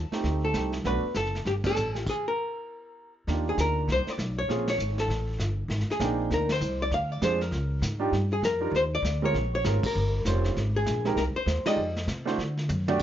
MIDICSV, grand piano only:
0, 0, Header, 1, 2, 480
1, 0, Start_track
1, 0, Tempo, 303797
1, 1332, Time_signature, 4, 2, 24, 8
1, 20580, End_track
2, 0, Start_track
2, 0, Title_t, "Grand piano"
2, 0, Program_c, 0, 0
2, 188, Note_on_c, 0, 57, 61
2, 203, Note_on_c, 0, 60, 55
2, 208, Note_on_c, 0, 63, 58
2, 213, Note_on_c, 0, 67, 67
2, 816, Note_off_c, 0, 57, 0
2, 823, Note_off_c, 0, 60, 0
2, 826, Note_off_c, 0, 63, 0
2, 828, Note_off_c, 0, 67, 0
2, 845, Note_on_c, 0, 57, 51
2, 858, Note_on_c, 0, 60, 42
2, 873, Note_on_c, 0, 63, 47
2, 877, Note_on_c, 0, 67, 52
2, 1114, Note_off_c, 0, 57, 0
2, 1121, Note_off_c, 0, 60, 0
2, 1128, Note_off_c, 0, 63, 0
2, 1130, Note_off_c, 0, 67, 0
2, 1340, Note_on_c, 0, 57, 62
2, 1348, Note_on_c, 0, 59, 52
2, 1361, Note_on_c, 0, 62, 56
2, 1364, Note_on_c, 0, 66, 68
2, 1602, Note_off_c, 0, 57, 0
2, 1606, Note_off_c, 0, 59, 0
2, 1613, Note_off_c, 0, 62, 0
2, 1614, Note_off_c, 0, 66, 0
2, 2585, Note_on_c, 0, 57, 54
2, 2592, Note_on_c, 0, 59, 51
2, 2601, Note_on_c, 0, 62, 54
2, 2619, Note_on_c, 0, 69, 61
2, 2753, Note_off_c, 0, 57, 0
2, 2756, Note_off_c, 0, 59, 0
2, 2761, Note_off_c, 0, 62, 0
2, 2770, Note_off_c, 0, 69, 0
2, 5184, Note_on_c, 0, 58, 52
2, 5190, Note_on_c, 0, 62, 52
2, 5201, Note_on_c, 0, 63, 47
2, 5201, Note_on_c, 0, 65, 48
2, 5210, Note_on_c, 0, 67, 57
2, 6505, Note_off_c, 0, 58, 0
2, 6508, Note_off_c, 0, 62, 0
2, 6513, Note_off_c, 0, 65, 0
2, 6514, Note_off_c, 0, 63, 0
2, 6518, Note_off_c, 0, 67, 0
2, 7092, Note_on_c, 0, 58, 65
2, 7106, Note_on_c, 0, 61, 64
2, 7107, Note_on_c, 0, 60, 63
2, 7112, Note_on_c, 0, 65, 62
2, 7123, Note_on_c, 0, 68, 77
2, 7356, Note_off_c, 0, 58, 0
2, 7362, Note_off_c, 0, 61, 0
2, 7363, Note_off_c, 0, 60, 0
2, 7365, Note_off_c, 0, 65, 0
2, 7371, Note_off_c, 0, 68, 0
2, 9477, Note_on_c, 0, 60, 62
2, 9479, Note_on_c, 0, 58, 67
2, 9495, Note_on_c, 0, 62, 59
2, 9499, Note_on_c, 0, 79, 82
2, 9502, Note_on_c, 0, 63, 64
2, 10196, Note_off_c, 0, 60, 0
2, 10197, Note_off_c, 0, 58, 0
2, 10206, Note_off_c, 0, 62, 0
2, 10207, Note_off_c, 0, 79, 0
2, 10209, Note_off_c, 0, 63, 0
2, 11405, Note_on_c, 0, 56, 60
2, 11414, Note_on_c, 0, 62, 55
2, 11421, Note_on_c, 0, 60, 55
2, 11433, Note_on_c, 0, 68, 61
2, 11434, Note_on_c, 0, 65, 59
2, 11670, Note_off_c, 0, 56, 0
2, 11674, Note_off_c, 0, 62, 0
2, 11678, Note_off_c, 0, 60, 0
2, 11683, Note_off_c, 0, 68, 0
2, 11684, Note_off_c, 0, 65, 0
2, 12630, Note_on_c, 0, 55, 71
2, 12633, Note_on_c, 0, 62, 70
2, 12639, Note_on_c, 0, 63, 69
2, 12643, Note_on_c, 0, 65, 71
2, 12649, Note_on_c, 0, 67, 89
2, 12810, Note_off_c, 0, 55, 0
2, 12812, Note_off_c, 0, 62, 0
2, 12815, Note_off_c, 0, 63, 0
2, 12817, Note_off_c, 0, 65, 0
2, 12820, Note_off_c, 0, 67, 0
2, 13587, Note_on_c, 0, 55, 67
2, 13599, Note_on_c, 0, 62, 55
2, 13599, Note_on_c, 0, 65, 63
2, 13602, Note_on_c, 0, 63, 59
2, 13610, Note_on_c, 0, 70, 81
2, 13769, Note_off_c, 0, 55, 0
2, 13775, Note_off_c, 0, 62, 0
2, 13775, Note_off_c, 0, 65, 0
2, 13777, Note_off_c, 0, 63, 0
2, 13781, Note_off_c, 0, 70, 0
2, 14572, Note_on_c, 0, 56, 75
2, 14575, Note_on_c, 0, 60, 71
2, 14587, Note_on_c, 0, 61, 68
2, 14592, Note_on_c, 0, 65, 61
2, 14599, Note_on_c, 0, 70, 83
2, 14742, Note_off_c, 0, 56, 0
2, 14743, Note_off_c, 0, 60, 0
2, 14749, Note_off_c, 0, 61, 0
2, 14752, Note_off_c, 0, 65, 0
2, 14755, Note_off_c, 0, 70, 0
2, 15244, Note_on_c, 0, 56, 58
2, 15254, Note_on_c, 0, 60, 56
2, 15265, Note_on_c, 0, 61, 55
2, 15265, Note_on_c, 0, 65, 59
2, 15268, Note_on_c, 0, 70, 74
2, 15510, Note_off_c, 0, 56, 0
2, 15515, Note_off_c, 0, 60, 0
2, 15520, Note_off_c, 0, 65, 0
2, 15521, Note_off_c, 0, 61, 0
2, 15522, Note_off_c, 0, 70, 0
2, 16210, Note_on_c, 0, 55, 64
2, 16215, Note_on_c, 0, 61, 59
2, 16220, Note_on_c, 0, 60, 63
2, 16224, Note_on_c, 0, 65, 61
2, 16235, Note_on_c, 0, 72, 70
2, 16688, Note_off_c, 0, 55, 0
2, 16691, Note_off_c, 0, 61, 0
2, 16693, Note_off_c, 0, 60, 0
2, 16695, Note_off_c, 0, 65, 0
2, 16700, Note_off_c, 0, 72, 0
2, 17461, Note_on_c, 0, 56, 67
2, 17467, Note_on_c, 0, 60, 64
2, 17479, Note_on_c, 0, 63, 60
2, 17480, Note_on_c, 0, 67, 68
2, 17490, Note_on_c, 0, 70, 83
2, 17628, Note_off_c, 0, 56, 0
2, 17631, Note_off_c, 0, 60, 0
2, 17637, Note_off_c, 0, 63, 0
2, 17637, Note_off_c, 0, 67, 0
2, 17642, Note_off_c, 0, 70, 0
2, 18421, Note_on_c, 0, 63, 63
2, 18423, Note_on_c, 0, 56, 79
2, 18431, Note_on_c, 0, 65, 72
2, 18435, Note_on_c, 0, 67, 73
2, 18444, Note_on_c, 0, 74, 80
2, 18589, Note_off_c, 0, 63, 0
2, 18590, Note_off_c, 0, 56, 0
2, 18594, Note_off_c, 0, 65, 0
2, 18596, Note_off_c, 0, 67, 0
2, 18600, Note_off_c, 0, 74, 0
2, 19362, Note_on_c, 0, 57, 74
2, 19366, Note_on_c, 0, 62, 66
2, 19383, Note_on_c, 0, 64, 65
2, 19390, Note_on_c, 0, 72, 77
2, 19392, Note_on_c, 0, 66, 66
2, 19540, Note_off_c, 0, 57, 0
2, 19542, Note_off_c, 0, 62, 0
2, 19550, Note_off_c, 0, 64, 0
2, 19554, Note_off_c, 0, 72, 0
2, 19555, Note_off_c, 0, 66, 0
2, 20352, Note_on_c, 0, 62, 79
2, 20354, Note_on_c, 0, 57, 85
2, 20363, Note_on_c, 0, 66, 82
2, 20378, Note_on_c, 0, 67, 76
2, 20378, Note_on_c, 0, 74, 84
2, 20516, Note_off_c, 0, 62, 0
2, 20517, Note_off_c, 0, 57, 0
2, 20521, Note_off_c, 0, 66, 0
2, 20529, Note_off_c, 0, 67, 0
2, 20529, Note_off_c, 0, 74, 0
2, 20580, End_track
0, 0, End_of_file